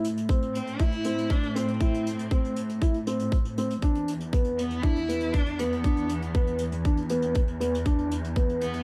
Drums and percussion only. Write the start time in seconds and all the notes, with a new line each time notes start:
0.04 closed hi-hat
0.17 closed hi-hat
0.29 kick, closed hi-hat
0.42 closed hi-hat
0.55 closed hi-hat
0.67 closed hi-hat
0.79 kick, closed hi-hat
0.92 closed hi-hat
1.04 closed hi-hat
1.18 closed hi-hat
1.30 kick, closed hi-hat
1.43 closed hi-hat
1.56 closed hi-hat
1.68 closed hi-hat
1.80 kick, closed hi-hat
1.94 closed hi-hat
2.07 closed hi-hat
2.19 closed hi-hat
2.31 kick, closed hi-hat
2.44 closed hi-hat
2.56 closed hi-hat
2.69 closed hi-hat
2.82 kick, closed hi-hat
2.94 closed hi-hat
3.07 closed hi-hat
3.19 closed hi-hat
3.32 kick, closed hi-hat
3.45 closed hi-hat
3.57 closed hi-hat
3.70 closed hi-hat
3.82 kick, closed hi-hat
3.95 closed hi-hat
4.08 closed hi-hat
4.20 closed hi-hat
4.33 kick, closed hi-hat
4.44 closed hi-hat
4.58 closed hi-hat
4.70 closed hi-hat
4.83 kick, closed hi-hat
4.96 closed hi-hat
5.09 closed hi-hat
5.20 closed hi-hat
5.34 kick, closed hi-hat
5.46 closed hi-hat
5.59 closed hi-hat
5.72 closed hi-hat
5.84 kick, closed hi-hat
5.97 closed hi-hat
6.09 closed hi-hat
6.22 closed hi-hat
6.34 kick, closed hi-hat
6.47 closed hi-hat
6.58 closed hi-hat
6.72 closed hi-hat
6.85 kick, closed hi-hat
6.97 closed hi-hat
7.09 closed hi-hat
7.22 closed hi-hat
7.34 kick, closed hi-hat
7.48 closed hi-hat
7.61 closed hi-hat
7.75 closed hi-hat
7.85 kick, closed hi-hat
7.98 closed hi-hat
8.11 closed hi-hat
8.24 closed hi-hat
8.36 kick, closed hi-hat
8.49 closed hi-hat
8.61 closed hi-hat
8.73 closed hi-hat